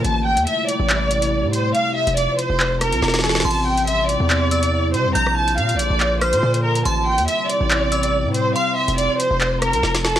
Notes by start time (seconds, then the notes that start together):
0.04 A1 C3 G3 A3 E4 A5, closed hi-hat
0.26 G5
0.37 E2, closed hi-hat
0.47 E5, closed hi-hat
0.68 D5, closed hi-hat
0.80 A1
0.90 clap
1.11 closed hi-hat
1.22 closed hi-hat
1.43 A2
1.53 C5, closed hi-hat
1.75 F3 C4 F4 F5, closed hi-hat
1.96 E5
2.07 F1, closed hi-hat
2.17 D5, closed hi-hat
2.38 C5, closed hi-hat
2.50 F1
2.60 clap
2.81 A#4, cross-stick, closed hi-hat
2.92 C2, closed hi-hat
3.02 F1, snare
3.08 snare
3.14 snare, closed hi-hat
3.19 snare
3.24 A4, snare
3.29 snare
3.35 snare, closed hi-hat
3.40 snare, closed hi-hat
3.45 A1 C3 G3 E4 A5 C6, crash
3.51 closed hi-hat
3.66 G5
3.77 closed hi-hat
3.87 E5, closed hi-hat
4.08 D5, closed hi-hat
4.20 E2
4.30 clap
4.51 E6, closed hi-hat
4.63 closed hi-hat
4.94 C3 C5, closed hi-hat
5.05 E2
5.15 A#1 D3 F3 A#3 F4 A#5 G6, closed hi-hat
5.27 cross-stick
5.37 A5
5.48 closed hi-hat
5.58 A#2 F5, closed hi-hat
5.69 closed hi-hat
5.74 A#1
5.79 D5, closed hi-hat
5.90 A#1
6.00 clap
6.22 C5 F6, cross-stick, closed hi-hat
6.33 A#2, closed hi-hat
6.43 A#2
6.54 closed hi-hat
6.64 A#4
6.75 closed hi-hat
6.85 A1 C3 G3 C4 E4 A5 C6, closed hi-hat
7.07 G5
7.18 E2, closed hi-hat
7.28 E5, closed hi-hat
7.49 D5, closed hi-hat
7.61 A1
7.71 clap
7.92 E6, closed hi-hat
8.03 closed hi-hat
8.24 A2
8.34 C5, closed hi-hat
8.55 F3 F4 F5 C6, closed hi-hat
8.77 E5
8.88 F1, closed hi-hat
8.98 D5, closed hi-hat
9.19 C5, closed hi-hat
9.31 F1
9.41 clap
9.62 A#4, cross-stick, closed hi-hat
9.73 C2, closed hi-hat
9.83 F1, snare
9.95 snare, closed hi-hat
10.05 A4, snare
10.16 snare, closed hi-hat